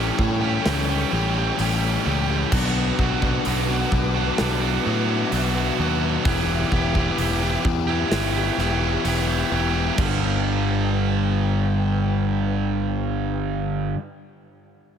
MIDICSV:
0, 0, Header, 1, 7, 480
1, 0, Start_track
1, 0, Tempo, 931677
1, 1298, Time_signature, 4, 2, 24, 8
1, 7719, End_track
2, 0, Start_track
2, 0, Title_t, "String section"
2, 0, Program_c, 0, 48
2, 0, Note_on_c, 0, 69, 83
2, 0, Note_on_c, 0, 79, 75
2, 0, Note_on_c, 0, 85, 89
2, 1277, Note_off_c, 0, 69, 0
2, 1278, Note_off_c, 0, 79, 0
2, 1278, Note_off_c, 0, 85, 0
2, 1305, Note_on_c, 0, 71, 84
2, 1305, Note_on_c, 0, 86, 92
2, 1306, Note_on_c, 0, 78, 79
2, 2253, Note_off_c, 0, 78, 0
2, 2266, Note_on_c, 0, 76, 81
2, 3204, Note_off_c, 0, 71, 0
2, 3204, Note_off_c, 0, 86, 0
2, 3214, Note_off_c, 0, 76, 0
2, 3228, Note_on_c, 0, 67, 82
2, 3228, Note_on_c, 0, 76, 74
2, 3230, Note_on_c, 0, 86, 89
2, 4176, Note_off_c, 0, 86, 0
2, 4180, Note_on_c, 0, 85, 87
2, 5126, Note_off_c, 0, 67, 0
2, 5126, Note_off_c, 0, 76, 0
2, 5131, Note_off_c, 0, 85, 0
2, 5146, Note_on_c, 0, 62, 81
2, 5146, Note_on_c, 0, 71, 71
2, 5147, Note_on_c, 0, 79, 85
2, 7179, Note_off_c, 0, 62, 0
2, 7179, Note_off_c, 0, 71, 0
2, 7180, Note_off_c, 0, 79, 0
2, 7719, End_track
3, 0, Start_track
3, 0, Title_t, "Overdriven electric guitar"
3, 0, Program_c, 1, 29
3, 454, Note_on_c, 1, 67, 83
3, 464, Note_on_c, 1, 61, 77
3, 471, Note_on_c, 1, 55, 73
3, 573, Note_off_c, 1, 55, 0
3, 579, Note_off_c, 1, 61, 0
3, 586, Note_off_c, 1, 67, 0
3, 934, Note_on_c, 1, 67, 76
3, 945, Note_on_c, 1, 61, 72
3, 953, Note_on_c, 1, 55, 74
3, 1054, Note_off_c, 1, 55, 0
3, 1060, Note_off_c, 1, 61, 0
3, 1065, Note_off_c, 1, 67, 0
3, 2374, Note_on_c, 1, 66, 82
3, 2383, Note_on_c, 1, 62, 75
3, 2391, Note_on_c, 1, 59, 68
3, 2498, Note_off_c, 1, 59, 0
3, 2502, Note_off_c, 1, 62, 0
3, 2504, Note_off_c, 1, 66, 0
3, 2853, Note_on_c, 1, 66, 82
3, 2863, Note_on_c, 1, 62, 66
3, 2871, Note_on_c, 1, 59, 64
3, 2977, Note_off_c, 1, 59, 0
3, 2983, Note_off_c, 1, 62, 0
3, 2984, Note_off_c, 1, 66, 0
3, 4295, Note_on_c, 1, 67, 79
3, 4304, Note_on_c, 1, 64, 76
3, 4313, Note_on_c, 1, 59, 64
3, 4416, Note_off_c, 1, 59, 0
3, 4421, Note_off_c, 1, 64, 0
3, 4427, Note_off_c, 1, 67, 0
3, 4777, Note_on_c, 1, 67, 75
3, 4788, Note_on_c, 1, 64, 69
3, 4795, Note_on_c, 1, 59, 56
3, 4896, Note_off_c, 1, 59, 0
3, 4903, Note_off_c, 1, 64, 0
3, 4908, Note_off_c, 1, 67, 0
3, 7719, End_track
4, 0, Start_track
4, 0, Title_t, "Overdriven electric guitar"
4, 0, Program_c, 2, 29
4, 0, Note_on_c, 2, 45, 103
4, 0, Note_on_c, 2, 52, 97
4, 0, Note_on_c, 2, 55, 60
4, 0, Note_on_c, 2, 61, 70
4, 0, Note_on_c, 2, 67, 77
4, 83, Note_off_c, 2, 52, 0
4, 88, Note_off_c, 2, 55, 0
4, 89, Note_on_c, 2, 52, 84
4, 94, Note_on_c, 2, 55, 87
4, 95, Note_off_c, 2, 61, 0
4, 100, Note_off_c, 2, 67, 0
4, 101, Note_on_c, 2, 61, 88
4, 106, Note_on_c, 2, 67, 87
4, 203, Note_off_c, 2, 67, 0
4, 209, Note_on_c, 2, 67, 75
4, 212, Note_off_c, 2, 45, 0
4, 214, Note_off_c, 2, 61, 0
4, 220, Note_on_c, 2, 61, 77
4, 221, Note_off_c, 2, 55, 0
4, 227, Note_on_c, 2, 55, 60
4, 453, Note_off_c, 2, 52, 0
4, 573, Note_on_c, 2, 52, 86
4, 574, Note_off_c, 2, 55, 0
4, 578, Note_off_c, 2, 61, 0
4, 580, Note_on_c, 2, 55, 92
4, 583, Note_off_c, 2, 67, 0
4, 584, Note_on_c, 2, 61, 94
4, 589, Note_on_c, 2, 67, 94
4, 685, Note_off_c, 2, 67, 0
4, 691, Note_on_c, 2, 67, 83
4, 695, Note_off_c, 2, 61, 0
4, 701, Note_on_c, 2, 61, 76
4, 703, Note_off_c, 2, 55, 0
4, 709, Note_on_c, 2, 55, 70
4, 810, Note_off_c, 2, 52, 0
4, 811, Note_on_c, 2, 45, 104
4, 815, Note_off_c, 2, 55, 0
4, 816, Note_on_c, 2, 52, 101
4, 819, Note_off_c, 2, 61, 0
4, 821, Note_on_c, 2, 55, 110
4, 822, Note_off_c, 2, 67, 0
4, 825, Note_on_c, 2, 61, 97
4, 828, Note_on_c, 2, 67, 111
4, 1047, Note_off_c, 2, 52, 0
4, 1053, Note_on_c, 2, 52, 87
4, 1055, Note_off_c, 2, 55, 0
4, 1059, Note_off_c, 2, 61, 0
4, 1062, Note_on_c, 2, 55, 91
4, 1065, Note_off_c, 2, 67, 0
4, 1065, Note_on_c, 2, 61, 99
4, 1071, Note_on_c, 2, 67, 88
4, 1167, Note_off_c, 2, 67, 0
4, 1173, Note_on_c, 2, 67, 84
4, 1177, Note_off_c, 2, 61, 0
4, 1183, Note_on_c, 2, 61, 68
4, 1184, Note_off_c, 2, 55, 0
4, 1190, Note_on_c, 2, 55, 68
4, 1281, Note_off_c, 2, 45, 0
4, 1281, Note_off_c, 2, 52, 0
4, 1281, Note_off_c, 2, 67, 0
4, 1286, Note_off_c, 2, 61, 0
4, 1290, Note_off_c, 2, 55, 0
4, 1294, Note_on_c, 2, 47, 100
4, 1301, Note_on_c, 2, 54, 100
4, 1304, Note_on_c, 2, 59, 103
4, 1309, Note_on_c, 2, 62, 107
4, 1312, Note_on_c, 2, 66, 109
4, 1528, Note_off_c, 2, 54, 0
4, 1534, Note_on_c, 2, 54, 83
4, 1540, Note_off_c, 2, 59, 0
4, 1542, Note_on_c, 2, 59, 88
4, 1545, Note_off_c, 2, 62, 0
4, 1546, Note_off_c, 2, 66, 0
4, 1547, Note_on_c, 2, 62, 98
4, 1553, Note_on_c, 2, 66, 91
4, 1648, Note_off_c, 2, 66, 0
4, 1654, Note_on_c, 2, 66, 81
4, 1660, Note_off_c, 2, 62, 0
4, 1662, Note_on_c, 2, 62, 75
4, 1669, Note_off_c, 2, 59, 0
4, 1671, Note_on_c, 2, 59, 65
4, 1769, Note_off_c, 2, 47, 0
4, 1775, Note_on_c, 2, 47, 105
4, 1776, Note_off_c, 2, 54, 0
4, 1782, Note_on_c, 2, 54, 111
4, 1783, Note_off_c, 2, 59, 0
4, 1785, Note_on_c, 2, 59, 104
4, 1786, Note_off_c, 2, 66, 0
4, 1787, Note_off_c, 2, 62, 0
4, 1789, Note_on_c, 2, 62, 103
4, 1792, Note_on_c, 2, 66, 110
4, 1890, Note_off_c, 2, 66, 0
4, 1896, Note_on_c, 2, 66, 84
4, 1905, Note_off_c, 2, 62, 0
4, 1907, Note_on_c, 2, 62, 70
4, 1911, Note_off_c, 2, 59, 0
4, 1913, Note_on_c, 2, 59, 67
4, 2009, Note_off_c, 2, 54, 0
4, 2015, Note_on_c, 2, 54, 80
4, 2019, Note_off_c, 2, 59, 0
4, 2021, Note_on_c, 2, 59, 84
4, 2025, Note_off_c, 2, 62, 0
4, 2026, Note_off_c, 2, 66, 0
4, 2027, Note_on_c, 2, 62, 80
4, 2032, Note_on_c, 2, 66, 80
4, 2135, Note_off_c, 2, 66, 0
4, 2137, Note_off_c, 2, 47, 0
4, 2141, Note_on_c, 2, 66, 79
4, 2148, Note_off_c, 2, 62, 0
4, 2150, Note_on_c, 2, 62, 71
4, 2155, Note_off_c, 2, 59, 0
4, 2158, Note_on_c, 2, 59, 64
4, 2377, Note_off_c, 2, 54, 0
4, 2499, Note_on_c, 2, 54, 85
4, 2504, Note_off_c, 2, 59, 0
4, 2506, Note_on_c, 2, 59, 79
4, 2509, Note_off_c, 2, 62, 0
4, 2511, Note_off_c, 2, 66, 0
4, 2511, Note_on_c, 2, 62, 84
4, 2517, Note_on_c, 2, 66, 90
4, 2614, Note_off_c, 2, 66, 0
4, 2620, Note_on_c, 2, 66, 77
4, 2626, Note_off_c, 2, 62, 0
4, 2628, Note_on_c, 2, 62, 68
4, 2634, Note_off_c, 2, 59, 0
4, 2637, Note_on_c, 2, 59, 65
4, 2737, Note_off_c, 2, 54, 0
4, 2739, Note_on_c, 2, 47, 108
4, 2743, Note_on_c, 2, 54, 105
4, 2745, Note_off_c, 2, 59, 0
4, 2747, Note_on_c, 2, 59, 100
4, 2750, Note_off_c, 2, 62, 0
4, 2750, Note_off_c, 2, 66, 0
4, 2752, Note_on_c, 2, 62, 106
4, 2756, Note_on_c, 2, 66, 120
4, 2972, Note_off_c, 2, 54, 0
4, 2978, Note_on_c, 2, 54, 84
4, 2983, Note_off_c, 2, 59, 0
4, 2985, Note_on_c, 2, 59, 88
4, 2987, Note_off_c, 2, 62, 0
4, 2990, Note_off_c, 2, 66, 0
4, 2990, Note_on_c, 2, 62, 90
4, 2996, Note_on_c, 2, 66, 92
4, 3092, Note_off_c, 2, 66, 0
4, 3099, Note_on_c, 2, 66, 76
4, 3106, Note_off_c, 2, 62, 0
4, 3108, Note_on_c, 2, 62, 72
4, 3113, Note_off_c, 2, 59, 0
4, 3115, Note_on_c, 2, 59, 65
4, 3205, Note_off_c, 2, 47, 0
4, 3205, Note_off_c, 2, 54, 0
4, 3205, Note_off_c, 2, 66, 0
4, 3217, Note_on_c, 2, 52, 100
4, 3222, Note_off_c, 2, 59, 0
4, 3224, Note_on_c, 2, 59, 96
4, 3227, Note_off_c, 2, 62, 0
4, 3229, Note_on_c, 2, 64, 105
4, 3234, Note_on_c, 2, 67, 103
4, 3453, Note_off_c, 2, 52, 0
4, 3459, Note_off_c, 2, 59, 0
4, 3460, Note_on_c, 2, 52, 80
4, 3465, Note_off_c, 2, 64, 0
4, 3465, Note_on_c, 2, 59, 81
4, 3469, Note_off_c, 2, 67, 0
4, 3471, Note_on_c, 2, 64, 92
4, 3475, Note_on_c, 2, 67, 90
4, 3572, Note_off_c, 2, 67, 0
4, 3578, Note_on_c, 2, 67, 83
4, 3583, Note_off_c, 2, 64, 0
4, 3589, Note_on_c, 2, 64, 80
4, 3590, Note_off_c, 2, 59, 0
4, 3596, Note_on_c, 2, 59, 67
4, 3691, Note_off_c, 2, 52, 0
4, 3698, Note_off_c, 2, 59, 0
4, 3698, Note_on_c, 2, 52, 90
4, 3704, Note_off_c, 2, 64, 0
4, 3704, Note_on_c, 2, 59, 97
4, 3709, Note_off_c, 2, 67, 0
4, 3710, Note_on_c, 2, 64, 91
4, 3715, Note_on_c, 2, 67, 101
4, 3811, Note_off_c, 2, 67, 0
4, 3817, Note_on_c, 2, 67, 70
4, 3821, Note_off_c, 2, 64, 0
4, 3827, Note_off_c, 2, 59, 0
4, 3827, Note_on_c, 2, 64, 63
4, 3833, Note_on_c, 2, 59, 64
4, 3932, Note_off_c, 2, 52, 0
4, 3937, Note_off_c, 2, 59, 0
4, 3938, Note_on_c, 2, 52, 76
4, 3943, Note_off_c, 2, 64, 0
4, 3943, Note_on_c, 2, 59, 78
4, 3949, Note_off_c, 2, 67, 0
4, 3949, Note_on_c, 2, 64, 83
4, 3955, Note_on_c, 2, 67, 88
4, 4048, Note_off_c, 2, 67, 0
4, 4054, Note_on_c, 2, 67, 78
4, 4057, Note_off_c, 2, 64, 0
4, 4064, Note_on_c, 2, 64, 68
4, 4065, Note_off_c, 2, 59, 0
4, 4071, Note_on_c, 2, 59, 60
4, 4299, Note_off_c, 2, 52, 0
4, 4415, Note_on_c, 2, 52, 79
4, 4417, Note_off_c, 2, 59, 0
4, 4423, Note_off_c, 2, 64, 0
4, 4423, Note_on_c, 2, 59, 83
4, 4428, Note_off_c, 2, 67, 0
4, 4429, Note_on_c, 2, 64, 81
4, 4434, Note_on_c, 2, 67, 84
4, 4530, Note_off_c, 2, 67, 0
4, 4536, Note_on_c, 2, 67, 78
4, 4539, Note_off_c, 2, 64, 0
4, 4545, Note_off_c, 2, 59, 0
4, 4546, Note_on_c, 2, 64, 67
4, 4551, Note_on_c, 2, 59, 62
4, 4650, Note_off_c, 2, 52, 0
4, 4656, Note_off_c, 2, 59, 0
4, 4656, Note_on_c, 2, 52, 94
4, 4662, Note_off_c, 2, 64, 0
4, 4662, Note_on_c, 2, 59, 105
4, 4665, Note_off_c, 2, 67, 0
4, 4668, Note_on_c, 2, 64, 105
4, 4672, Note_on_c, 2, 67, 109
4, 4887, Note_off_c, 2, 52, 0
4, 4894, Note_off_c, 2, 59, 0
4, 4894, Note_on_c, 2, 52, 75
4, 4899, Note_off_c, 2, 64, 0
4, 4900, Note_on_c, 2, 59, 77
4, 4903, Note_off_c, 2, 67, 0
4, 4905, Note_on_c, 2, 64, 83
4, 4909, Note_on_c, 2, 67, 91
4, 5006, Note_off_c, 2, 67, 0
4, 5013, Note_on_c, 2, 67, 79
4, 5015, Note_off_c, 2, 64, 0
4, 5021, Note_on_c, 2, 64, 60
4, 5024, Note_off_c, 2, 59, 0
4, 5030, Note_on_c, 2, 59, 59
4, 5122, Note_off_c, 2, 67, 0
4, 5123, Note_off_c, 2, 52, 0
4, 5127, Note_off_c, 2, 64, 0
4, 5130, Note_on_c, 2, 43, 90
4, 5131, Note_off_c, 2, 59, 0
4, 5142, Note_on_c, 2, 50, 94
4, 5151, Note_on_c, 2, 55, 116
4, 7184, Note_off_c, 2, 43, 0
4, 7195, Note_off_c, 2, 50, 0
4, 7205, Note_off_c, 2, 55, 0
4, 7719, End_track
5, 0, Start_track
5, 0, Title_t, "Fingered electric bass"
5, 0, Program_c, 3, 33
5, 99, Note_on_c, 3, 45, 91
5, 291, Note_off_c, 3, 45, 0
5, 340, Note_on_c, 3, 37, 94
5, 532, Note_off_c, 3, 37, 0
5, 579, Note_on_c, 3, 33, 92
5, 772, Note_off_c, 3, 33, 0
5, 821, Note_on_c, 3, 33, 94
5, 1013, Note_off_c, 3, 33, 0
5, 1062, Note_on_c, 3, 37, 94
5, 1254, Note_off_c, 3, 37, 0
5, 1299, Note_on_c, 3, 35, 102
5, 1492, Note_off_c, 3, 35, 0
5, 1540, Note_on_c, 3, 35, 98
5, 1733, Note_off_c, 3, 35, 0
5, 1784, Note_on_c, 3, 35, 99
5, 1976, Note_off_c, 3, 35, 0
5, 2021, Note_on_c, 3, 35, 94
5, 2214, Note_off_c, 3, 35, 0
5, 2269, Note_on_c, 3, 35, 88
5, 2458, Note_off_c, 3, 35, 0
5, 2504, Note_on_c, 3, 45, 98
5, 2696, Note_off_c, 3, 45, 0
5, 2741, Note_on_c, 3, 35, 95
5, 2934, Note_off_c, 3, 35, 0
5, 2983, Note_on_c, 3, 39, 96
5, 3175, Note_off_c, 3, 39, 0
5, 3222, Note_on_c, 3, 28, 108
5, 3414, Note_off_c, 3, 28, 0
5, 3463, Note_on_c, 3, 28, 90
5, 3655, Note_off_c, 3, 28, 0
5, 3699, Note_on_c, 3, 28, 93
5, 3893, Note_off_c, 3, 28, 0
5, 3942, Note_on_c, 3, 40, 92
5, 4135, Note_off_c, 3, 40, 0
5, 4179, Note_on_c, 3, 31, 89
5, 4373, Note_off_c, 3, 31, 0
5, 4420, Note_on_c, 3, 28, 85
5, 4613, Note_off_c, 3, 28, 0
5, 4661, Note_on_c, 3, 28, 91
5, 4854, Note_off_c, 3, 28, 0
5, 4902, Note_on_c, 3, 28, 89
5, 5095, Note_off_c, 3, 28, 0
5, 5144, Note_on_c, 3, 31, 106
5, 7177, Note_off_c, 3, 31, 0
5, 7719, End_track
6, 0, Start_track
6, 0, Title_t, "Muted overdriven electric guitar strokes"
6, 93, Note_on_c, 9, 29, 48
6, 144, Note_off_c, 9, 29, 0
6, 2018, Note_on_c, 9, 29, 49
6, 2070, Note_off_c, 9, 29, 0
6, 3942, Note_on_c, 9, 29, 46
6, 3993, Note_off_c, 9, 29, 0
6, 7719, End_track
7, 0, Start_track
7, 0, Title_t, "Drums"
7, 96, Note_on_c, 9, 36, 89
7, 148, Note_off_c, 9, 36, 0
7, 338, Note_on_c, 9, 38, 115
7, 338, Note_on_c, 9, 46, 71
7, 389, Note_off_c, 9, 38, 0
7, 389, Note_off_c, 9, 46, 0
7, 818, Note_on_c, 9, 46, 74
7, 869, Note_off_c, 9, 46, 0
7, 1298, Note_on_c, 9, 49, 123
7, 1299, Note_on_c, 9, 36, 116
7, 1349, Note_off_c, 9, 49, 0
7, 1350, Note_off_c, 9, 36, 0
7, 1539, Note_on_c, 9, 36, 84
7, 1591, Note_off_c, 9, 36, 0
7, 1660, Note_on_c, 9, 36, 77
7, 1711, Note_off_c, 9, 36, 0
7, 1778, Note_on_c, 9, 46, 67
7, 1829, Note_off_c, 9, 46, 0
7, 2019, Note_on_c, 9, 36, 87
7, 2071, Note_off_c, 9, 36, 0
7, 2258, Note_on_c, 9, 38, 117
7, 2258, Note_on_c, 9, 46, 63
7, 2309, Note_off_c, 9, 38, 0
7, 2309, Note_off_c, 9, 46, 0
7, 2741, Note_on_c, 9, 46, 67
7, 2792, Note_off_c, 9, 46, 0
7, 3222, Note_on_c, 9, 36, 115
7, 3222, Note_on_c, 9, 46, 69
7, 3273, Note_off_c, 9, 36, 0
7, 3273, Note_off_c, 9, 46, 0
7, 3462, Note_on_c, 9, 36, 85
7, 3513, Note_off_c, 9, 36, 0
7, 3581, Note_on_c, 9, 36, 84
7, 3633, Note_off_c, 9, 36, 0
7, 3700, Note_on_c, 9, 46, 66
7, 3752, Note_off_c, 9, 46, 0
7, 3941, Note_on_c, 9, 36, 88
7, 3992, Note_off_c, 9, 36, 0
7, 4181, Note_on_c, 9, 38, 115
7, 4181, Note_on_c, 9, 46, 69
7, 4232, Note_off_c, 9, 38, 0
7, 4232, Note_off_c, 9, 46, 0
7, 4423, Note_on_c, 9, 38, 33
7, 4474, Note_off_c, 9, 38, 0
7, 4662, Note_on_c, 9, 46, 77
7, 4714, Note_off_c, 9, 46, 0
7, 5142, Note_on_c, 9, 36, 111
7, 5142, Note_on_c, 9, 57, 90
7, 5193, Note_off_c, 9, 57, 0
7, 5194, Note_off_c, 9, 36, 0
7, 7719, End_track
0, 0, End_of_file